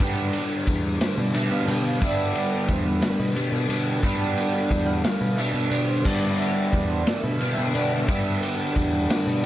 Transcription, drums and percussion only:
0.00 kick, ride
0.33 ride
0.67 kick, ride
1.01 snare, ride
1.34 ride
1.68 ride
2.02 kick, ride
2.35 ride
2.68 kick, ride
3.02 snare, ride
3.36 ride
3.70 ride
4.03 kick, ride
4.37 ride
4.71 kick, ride
5.04 snare, ride
5.38 ride
5.71 ride
6.05 kick, crash
6.39 ride
6.73 kick, ride
7.07 snare, ride
7.41 ride
7.75 ride
8.08 kick, ride
8.43 ride
8.76 kick, ride
9.10 snare, ride

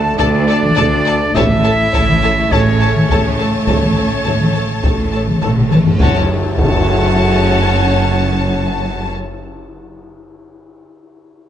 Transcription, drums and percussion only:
0.19 taiko
0.63 taiko mid
0.77 taiko
1.35 taiko
1.51 taiko mid
1.94 taiko
2.09 taiko mid
2.52 taiko
2.96 taiko mid
3.10 taiko
3.67 taiko
3.82 taiko mid
4.26 taiko
4.40 taiko mid
4.84 taiko
5.27 taiko mid
5.42 taiko low-mid
5.56 taiko low-mid
5.71 taiko mid
5.85 taiko low
6.00 taiko, tam-tam
6.58 taiko, tam-tam

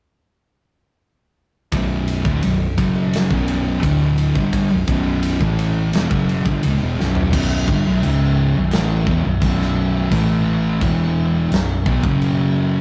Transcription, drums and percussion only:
1.72 kick, ride
2.08 ride
2.25 kick
2.43 ride
2.78 kick, ride
3.13 snare, ride
3.31 kick
3.48 ride
3.83 kick, ride
4.18 ride
4.35 kick
4.53 kick, ride
4.88 kick, ride
5.23 ride
5.41 kick
5.59 ride
5.93 snare, ride
6.11 kick
6.29 ride
6.46 kick
6.63 ride
7.01 snare
7.15 floor tom
7.33 kick, crash
7.68 kick
8.03 crash
8.71 snare, crash
9.07 kick
9.42 kick, crash
9.62 snare
10.12 kick, crash
10.81 kick, crash
11.52 snare, crash
11.86 kick
12.03 kick
12.22 crash

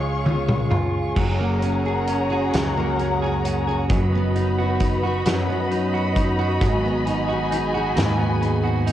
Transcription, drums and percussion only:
0.26 high tom
0.49 mid tom
0.71 mid tom
1.16 kick, crash
1.62 closed hi-hat
2.07 closed hi-hat
2.53 snare, closed hi-hat
2.99 closed hi-hat
3.45 closed hi-hat
3.90 kick, closed hi-hat
4.36 closed hi-hat
4.80 kick, closed hi-hat
5.26 snare, closed hi-hat
5.71 closed hi-hat
6.16 kick, closed hi-hat
6.61 kick, closed hi-hat
7.07 closed hi-hat
7.52 closed hi-hat
7.97 snare, closed hi-hat
8.42 closed hi-hat
8.87 closed hi-hat

